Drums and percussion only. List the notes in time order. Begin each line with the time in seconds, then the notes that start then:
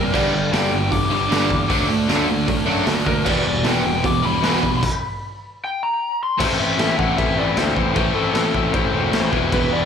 0.14 kick, crash
0.53 snare, open hi-hat
0.92 kick, open hi-hat
1.32 snare, open hi-hat
1.51 kick
1.70 kick, open hi-hat
2.09 snare, open hi-hat
2.48 kick, open hi-hat
2.87 snare, open hi-hat
3.06 kick
3.26 kick, crash
3.64 snare, open hi-hat
4.04 kick, open hi-hat
4.43 snare, open hi-hat
4.63 kick
4.83 kick, crash
6.40 kick, crash
6.79 snare, crash
6.99 kick
7.18 kick, crash
7.57 snare, crash
7.77 kick
7.96 kick, crash
8.35 snare, crash
8.54 kick
8.74 kick, crash
9.13 snare, crash
9.33 kick
9.52 kick, crash